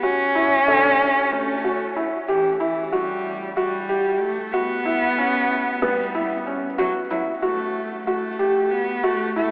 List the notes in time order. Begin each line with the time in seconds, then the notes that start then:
0.03 C#4 F#4
0.35 E4
0.68 D3
1.32 A3 C#4
1.64 F#4
1.96 E4
2.28 E3 G4
2.60 E3 E4
2.92 G3 F#4
3.56 G3 F#4
3.89 G4
4.20 A3
4.53 B3 F#4
4.85 E4
5.18 C#4
5.82 G3 B3
6.15 E4
6.47 C#4
6.78 F#3 F#4
7.11 F#3 E4
7.42 A3 F#4
8.07 A3 F#4
8.39 G4
8.71 B3
9.03 A3 F#4
9.36 A3 E4